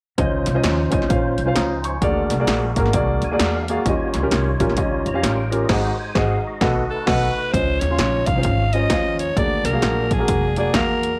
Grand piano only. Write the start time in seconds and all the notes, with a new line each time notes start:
0.18 C#3 C#4 F4 C5 D#5
0.54 C#4 F4 C5 D#5
0.90 C#4 F4 C5 D#5
1.08 C#4 F4 C5 F5
1.46 C#4 F4 C5 F5
1.56 A#5 D#6
1.85 G#5 C#6
2.01 D3 A#3 F#4 G#4 D5
2.40 A#3 F#4 G#4 D5
2.77 A#3 F#4 G#4 A#4
2.93 A#3 F#4 G#4 D5
3.31 A#3 F#4 G#4 D5
3.69 A#3 F#4 G#4 F5
3.87 D#3 C#4 F4 G4 D#5
4.23 C#4 F4 G4 A#4
4.60 C#4 F4 G4 A#4
4.77 C#4 F4 G4 D#5
5.14 C#4 F4 G4 F5
5.52 C#4 F4 G4 A#4
5.69 G#2 C4 F#4 G#4 D#5
6.15 C4 F#4 G#4 D#5
6.61 B2 B3 F#4 A4 D#5
7.06 B3 F#4 A4 D#5
7.54 C#3 C#4 F4 C5 D#5
7.91 C#4 F4 F5 C6
8.37 C#4 F4 C5 F5
8.74 C#4 F4 C5 D#5
8.91 C#4 F4 C5 F5
9.36 D3 A#3 F#4 G#4 D5
9.73 A#3 F#4 G#4 F5
10.19 A#3 F#4 G#4 A#4
10.57 A#3 F#4 G#4 D5
10.74 A#3 F#4 G#4 F5